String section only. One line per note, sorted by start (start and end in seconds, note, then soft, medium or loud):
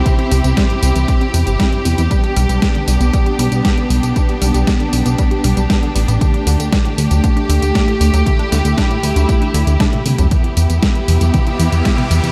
0.00 2.07 C4 medium
0.00 2.07 E4 medium
0.00 6.17 G4 medium
2.11 6.17 B3 medium
2.11 8.22 D4 medium
6.21 10.27 A3 medium
6.21 10.27 G4 medium
8.27 10.30 E4 medium
10.32 12.32 B3 medium
10.32 12.32 E4 medium
10.32 12.32 G4 medium